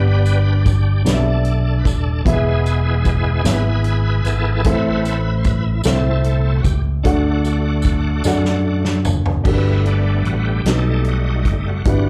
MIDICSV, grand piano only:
0, 0, Header, 1, 2, 480
1, 0, Start_track
1, 0, Key_signature, 1, "major"
1, 0, Tempo, 801068
1, 1351, Time_signature, 6, 3, 24, 8
1, 7247, End_track
2, 0, Start_track
2, 0, Title_t, "Grand piano"
2, 0, Program_c, 0, 0
2, 0, Note_on_c, 0, 43, 58
2, 0, Note_on_c, 0, 59, 67
2, 0, Note_on_c, 0, 62, 62
2, 0, Note_on_c, 0, 67, 62
2, 0, Note_on_c, 0, 71, 67
2, 0, Note_on_c, 0, 74, 79
2, 16, Control_c, 0, 64, 127
2, 470, Note_off_c, 0, 59, 0
2, 471, Note_off_c, 0, 62, 0
2, 474, Note_off_c, 0, 67, 0
2, 475, Note_off_c, 0, 71, 0
2, 478, Note_off_c, 0, 74, 0
2, 606, Note_off_c, 0, 43, 0
2, 626, Note_on_c, 0, 59, 57
2, 629, Note_on_c, 0, 62, 50
2, 632, Note_on_c, 0, 67, 51
2, 640, Note_on_c, 0, 71, 56
2, 644, Note_on_c, 0, 74, 50
2, 677, Note_off_c, 0, 74, 0
2, 684, Note_on_c, 0, 76, 67
2, 1189, Note_off_c, 0, 59, 0
2, 1190, Note_off_c, 0, 62, 0
2, 1192, Note_off_c, 0, 67, 0
2, 1196, Note_off_c, 0, 71, 0
2, 1218, Note_off_c, 0, 76, 0
2, 1348, Note_on_c, 0, 59, 67
2, 1353, Note_on_c, 0, 64, 65
2, 1357, Note_on_c, 0, 52, 61
2, 1359, Control_c, 0, 64, 0
2, 1359, Note_on_c, 0, 66, 53
2, 1360, Note_on_c, 0, 71, 65
2, 1366, Note_on_c, 0, 76, 80
2, 1394, Note_off_c, 0, 66, 0
2, 1395, Note_on_c, 0, 68, 67
2, 1461, Control_c, 0, 64, 127
2, 1909, Note_off_c, 0, 59, 0
2, 1912, Note_off_c, 0, 64, 0
2, 1915, Note_off_c, 0, 71, 0
2, 1918, Note_off_c, 0, 76, 0
2, 1933, Note_off_c, 0, 68, 0
2, 2048, Note_off_c, 0, 52, 0
2, 2062, Note_on_c, 0, 59, 59
2, 2065, Note_on_c, 0, 64, 57
2, 2074, Note_on_c, 0, 68, 57
2, 2077, Note_on_c, 0, 71, 56
2, 2082, Note_on_c, 0, 76, 65
2, 2626, Note_off_c, 0, 59, 0
2, 2627, Note_off_c, 0, 64, 0
2, 2631, Note_off_c, 0, 68, 0
2, 2633, Note_off_c, 0, 71, 0
2, 2635, Note_off_c, 0, 76, 0
2, 2779, Note_on_c, 0, 60, 77
2, 2787, Note_on_c, 0, 64, 66
2, 2792, Note_on_c, 0, 69, 73
2, 2794, Note_on_c, 0, 45, 64
2, 2795, Control_c, 0, 64, 0
2, 2796, Note_on_c, 0, 72, 67
2, 2801, Note_on_c, 0, 76, 83
2, 2894, Control_c, 0, 64, 127
2, 3344, Note_off_c, 0, 60, 0
2, 3347, Note_off_c, 0, 64, 0
2, 3350, Note_off_c, 0, 69, 0
2, 3352, Note_off_c, 0, 72, 0
2, 3355, Note_off_c, 0, 76, 0
2, 3486, Note_off_c, 0, 45, 0
2, 3500, Note_on_c, 0, 60, 65
2, 3504, Note_on_c, 0, 64, 57
2, 3509, Note_on_c, 0, 69, 58
2, 3515, Note_on_c, 0, 72, 52
2, 3519, Note_on_c, 0, 76, 68
2, 4064, Note_off_c, 0, 60, 0
2, 4066, Note_off_c, 0, 64, 0
2, 4069, Note_off_c, 0, 69, 0
2, 4072, Note_off_c, 0, 72, 0
2, 4074, Note_off_c, 0, 76, 0
2, 4215, Note_on_c, 0, 62, 73
2, 4223, Note_on_c, 0, 66, 66
2, 4225, Note_on_c, 0, 50, 61
2, 4227, Note_on_c, 0, 69, 64
2, 4233, Note_on_c, 0, 74, 67
2, 4234, Control_c, 0, 64, 0
2, 4235, Note_on_c, 0, 78, 77
2, 4334, Control_c, 0, 64, 127
2, 4782, Note_off_c, 0, 62, 0
2, 4786, Note_off_c, 0, 66, 0
2, 4788, Note_off_c, 0, 69, 0
2, 4791, Note_off_c, 0, 74, 0
2, 4792, Note_off_c, 0, 78, 0
2, 4922, Note_off_c, 0, 50, 0
2, 4941, Note_on_c, 0, 62, 65
2, 4948, Note_on_c, 0, 66, 64
2, 4950, Note_on_c, 0, 69, 62
2, 4954, Note_on_c, 0, 74, 64
2, 4959, Note_on_c, 0, 78, 76
2, 5506, Note_off_c, 0, 62, 0
2, 5509, Note_off_c, 0, 66, 0
2, 5510, Note_off_c, 0, 69, 0
2, 5512, Note_off_c, 0, 74, 0
2, 5514, Note_off_c, 0, 78, 0
2, 5654, Note_on_c, 0, 62, 64
2, 5659, Note_on_c, 0, 66, 60
2, 5662, Note_on_c, 0, 43, 53
2, 5663, Note_on_c, 0, 67, 60
2, 5669, Note_on_c, 0, 69, 59
2, 5673, Control_c, 0, 64, 0
2, 5674, Note_on_c, 0, 70, 56
2, 5709, Note_off_c, 0, 70, 0
2, 5711, Note_on_c, 0, 71, 74
2, 5792, Control_c, 0, 64, 127
2, 6223, Note_off_c, 0, 62, 0
2, 6225, Note_off_c, 0, 66, 0
2, 6227, Note_off_c, 0, 67, 0
2, 6230, Note_off_c, 0, 69, 0
2, 6251, Note_off_c, 0, 71, 0
2, 6362, Note_off_c, 0, 43, 0
2, 6383, Note_on_c, 0, 63, 55
2, 6388, Note_on_c, 0, 66, 51
2, 6392, Note_on_c, 0, 47, 53
2, 6392, Note_on_c, 0, 67, 53
2, 6396, Control_c, 0, 64, 0
2, 6396, Note_on_c, 0, 69, 53
2, 6401, Note_on_c, 0, 71, 61
2, 6503, Control_c, 0, 64, 127
2, 6948, Note_off_c, 0, 63, 0
2, 6950, Note_off_c, 0, 66, 0
2, 6952, Note_off_c, 0, 67, 0
2, 6955, Note_off_c, 0, 69, 0
2, 6957, Note_off_c, 0, 71, 0
2, 7088, Note_off_c, 0, 47, 0
2, 7103, Note_on_c, 0, 62, 68
2, 7107, Note_on_c, 0, 64, 64
2, 7112, Note_on_c, 0, 66, 60
2, 7114, Note_on_c, 0, 43, 53
2, 7115, Note_on_c, 0, 67, 62
2, 7116, Control_c, 0, 64, 0
2, 7124, Note_on_c, 0, 71, 77
2, 7208, Control_c, 0, 64, 127
2, 7247, Note_off_c, 0, 43, 0
2, 7247, Note_off_c, 0, 62, 0
2, 7247, Note_off_c, 0, 64, 0
2, 7247, Note_off_c, 0, 66, 0
2, 7247, Note_off_c, 0, 67, 0
2, 7247, Note_off_c, 0, 71, 0
2, 7247, End_track
0, 0, End_of_file